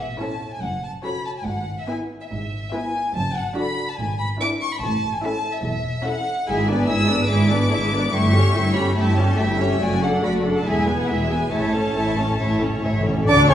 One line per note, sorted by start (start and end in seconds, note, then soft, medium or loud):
0.00 0.12 A1 soft
0.00 0.11 A2 soft
0.00 0.37 A2 soft
0.00 0.20 E5 soft
0.20 0.51 C#4 soft
0.20 0.51 E4 soft
0.20 0.52 A4 soft
0.20 0.52 C#5 soft
0.20 0.52 A5 medium
0.53 0.63 G#5 soft
0.62 0.96 F#1 soft
0.62 0.96 F#2 soft
0.62 0.83 F#5 soft
0.84 0.92 A5 soft
1.04 1.36 C#4 soft
1.04 1.36 F#4 soft
1.04 1.37 A4 soft
1.04 1.37 C#5 soft
1.04 1.25 B5 medium
1.26 1.30 A5 medium
1.37 1.47 G#5 soft
1.47 1.80 G#1 medium
1.47 1.80 G#2 soft
1.47 1.79 F#5 medium
1.79 1.89 E5 soft
1.88 2.20 B3 soft
1.88 2.20 E4 soft
1.88 2.20 B4 soft
1.88 2.20 E5 soft
1.88 1.96 G#5 medium
2.21 2.25 E5 soft
2.30 2.64 G#1 medium
2.30 2.65 G#2 medium
2.30 2.72 E5 medium
2.73 3.05 B3 soft
2.73 3.05 E4 soft
2.73 3.05 B4 soft
2.73 3.05 E5 soft
2.73 3.15 G#5 medium
3.16 3.49 F#1 medium
3.16 3.49 F#2 medium
3.16 3.36 A5 medium
3.36 3.57 F#5 medium
3.56 3.88 D4 soft
3.56 3.88 F#4 soft
3.56 3.89 A4 soft
3.56 3.89 D5 soft
3.56 3.88 B5 medium
3.90 4.00 A5 soft
3.99 4.32 G#1 medium
3.99 4.32 G#2 medium
3.99 4.20 G#5 medium
4.19 4.27 B5 medium
4.41 4.72 D4 medium
4.41 4.72 E4 soft
4.41 4.72 B4 soft
4.41 4.72 E5 soft
4.41 4.49 D6 medium
4.62 4.72 C#6 medium
4.73 4.83 B5 medium
4.82 5.15 A1 medium
4.82 5.15 A2 medium
4.82 5.12 A5 medium
5.14 5.24 G#5 medium
5.23 5.54 C#4 soft
5.23 5.55 E4 medium
5.23 5.55 A4 medium
5.23 5.55 E5 medium
5.23 5.54 A5 medium
5.55 5.64 E5 medium
5.65 5.98 E1 medium
5.65 5.98 E2 medium
5.65 6.06 E5 medium
6.05 6.37 C#4 medium
6.05 6.37 E4 medium
6.05 6.38 A4 soft
6.05 6.38 E5 soft
6.05 6.48 F#5 medium
6.47 6.84 G#1 medium
6.47 6.84 G#2 medium
6.47 6.67 G#3 medium
6.47 6.67 E4 medium
6.47 6.68 G#4 soft
6.47 6.67 E5 soft
6.47 6.89 G#5 medium
6.68 6.89 B3 soft
6.68 6.89 D4 soft
6.68 6.89 B4 soft
6.68 6.89 D5 soft
6.88 7.25 G#1 medium
6.88 7.25 G#2 medium
6.88 7.09 G#3 soft
6.88 7.09 E4 soft
6.88 7.10 G#4 medium
6.88 7.10 E5 soft
6.88 7.29 E6 medium
7.09 7.30 B3 soft
7.09 7.30 D4 soft
7.09 7.30 B4 medium
7.09 7.30 D5 soft
7.29 7.67 G#1 medium
7.29 7.67 G#2 medium
7.29 7.49 G#3 soft
7.29 7.49 E4 soft
7.29 7.50 G#4 medium
7.29 7.49 E5 medium
7.29 8.11 D6 medium
7.51 7.72 B3 soft
7.51 7.72 D4 soft
7.51 7.72 B4 soft
7.51 7.72 D5 soft
7.71 8.09 G#1 medium
7.71 8.09 G#2 medium
7.71 7.92 G#3 soft
7.71 7.93 E4 soft
7.71 7.93 G#4 soft
7.71 7.93 E5 soft
7.92 8.13 B3 soft
7.92 8.13 D4 soft
7.92 8.14 B4 soft
7.92 8.14 D5 soft
8.12 8.50 G1 medium
8.12 8.50 G2 medium
8.12 8.33 A3 soft
8.12 8.33 E4 soft
8.12 8.33 G4 soft
8.12 8.33 E5 soft
8.12 8.75 C#6 medium
8.33 8.55 C#4 soft
8.33 8.54 G4 soft
8.33 8.55 A4 soft
8.33 8.55 C#5 soft
8.54 8.92 G1 medium
8.54 8.92 G2 medium
8.54 8.75 A3 soft
8.54 8.75 E4 soft
8.54 8.75 G4 soft
8.54 8.75 E5 soft
8.74 8.96 C#4 soft
8.74 8.96 G4 soft
8.74 8.96 A4 soft
8.74 8.96 C#5 soft
8.74 8.96 B5 medium
8.95 9.34 G1 medium
8.95 9.34 G2 medium
8.95 9.16 A3 soft
8.95 9.16 E4 medium
8.95 9.16 G4 medium
8.95 9.16 E5 soft
8.95 9.39 A5 medium
9.16 9.39 C#4 soft
9.16 9.39 G4 medium
9.16 9.39 A4 soft
9.16 9.39 C#5 soft
9.39 9.77 G1 medium
9.39 9.76 G2 medium
9.39 9.61 A3 soft
9.39 9.61 E4 soft
9.39 9.60 G4 soft
9.39 9.60 E5 soft
9.39 9.82 E5 medium
9.59 9.82 C#4 soft
9.59 9.82 G4 soft
9.59 9.81 A4 soft
9.59 9.81 C#5 soft
9.81 10.18 F#1 medium
9.81 10.18 F#2 medium
9.81 10.01 A3 soft
9.81 10.01 F#4 soft
9.81 10.01 F#4 medium
9.81 10.01 D5 soft
9.81 10.03 G#5 medium
10.02 10.24 D4 soft
10.02 10.23 A4 soft
10.02 10.24 A4 soft
10.02 10.23 F#5 soft
10.02 10.24 F#5 medium
10.23 10.61 F#1 medium
10.23 10.61 F#2 medium
10.23 10.45 A3 soft
10.23 10.45 F#4 soft
10.23 10.45 D5 soft
10.23 10.32 B5 medium
10.44 10.66 D4 soft
10.44 10.66 A4 soft
10.44 10.66 F#5 soft
10.56 10.66 A5 soft
10.66 11.03 E1 soft
10.66 11.04 E2 medium
10.66 10.86 G#3 soft
10.66 10.86 E4 soft
10.66 10.86 G#4 soft
10.66 10.86 E5 soft
10.66 10.98 G#5 medium
10.87 11.09 B3 soft
10.87 11.09 G#4 soft
10.87 11.08 B4 soft
10.87 11.08 G#5 soft
11.00 11.09 F#5 medium
11.08 11.47 E1 medium
11.08 11.47 E2 medium
11.08 11.30 G#3 soft
11.08 11.30 E4 soft
11.08 11.30 G#4 soft
11.08 11.30 E5 soft
11.08 11.30 E5 medium
11.30 11.53 B3 soft
11.30 11.52 G#4 soft
11.30 11.52 B4 soft
11.30 11.52 G#5 soft
11.30 11.53 G#5 medium
11.52 11.91 A1 soft
11.52 11.59 A2 soft
11.52 11.91 A2 medium
11.52 11.73 A3 soft
11.52 11.73 E4 soft
11.52 11.72 C#5 soft
11.52 11.72 E5 soft
11.52 12.85 A5 medium
11.60 11.67 A2 soft
11.68 11.75 A2 soft
11.73 11.83 A2 soft
11.73 11.96 C#4 soft
11.73 11.96 A4 soft
11.73 11.95 C#5 soft
11.96 12.35 A1 medium
11.96 12.35 A2 soft
11.96 12.06 A2 soft
11.96 12.19 A3 soft
11.96 12.19 E4 soft
11.96 12.17 C#5 soft
11.96 12.18 E5 soft
12.07 12.14 A2 soft
12.15 12.22 A2 soft
12.15 12.41 C#4 soft
12.15 12.41 A4 soft
12.15 12.39 C#5 soft
12.23 12.29 A2 soft
12.31 12.37 A2 soft
12.39 12.79 A1 soft
12.39 12.45 A2 soft
12.39 12.79 A2 medium
12.39 12.61 A3 soft
12.39 12.61 E4 soft
12.39 12.61 C#5 soft
12.39 12.61 E5 soft
12.46 12.53 A2 soft
12.54 12.61 A2 medium
12.62 12.68 A2 medium
12.62 12.84 C#4 soft
12.62 12.84 A4 soft
12.62 12.82 C#5 soft
12.70 12.76 A2 medium
12.77 12.84 A2 medium
12.83 13.23 A1 medium
12.83 13.23 A2 medium
12.83 12.91 A2 medium
12.83 13.06 A3 soft
12.83 13.06 E4 soft
12.83 13.05 C#5 soft
12.83 13.06 E5 soft
12.93 12.99 A2 medium
13.01 13.07 A2 medium
13.06 13.15 A2 medium
13.06 13.28 C#4 soft
13.06 13.28 A4 soft
13.06 13.28 C#5 soft
13.16 13.23 A2 medium
13.27 13.48 D2 medium
13.27 13.48 D3 medium
13.27 13.48 D4 medium
13.27 13.38 D4 medium
13.27 13.47 D5 medium
13.27 13.51 D5 medium
13.27 13.48 D6 loud
13.27 13.34 D6 medium
13.48 13.54 C#2 medium
13.48 13.54 C#3 medium
13.48 13.54 C#4 medium
13.48 13.54 C#5 medium
13.48 13.54 C#6 medium